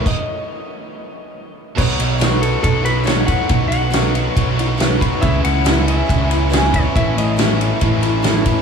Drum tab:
CC |x-------|x-------|--------|--------|
RD |--------|-xxxxxxx|xxxxxxxx|xxxxxxxx|
SD |--------|--o---o-|--o---o-|--o---o-|
BD |o-------|o---o--o|o---o--o|o---o--o|

CC |--------|
RD |xxxxxxxx|
SD |--o---o-|
BD |o---o--o|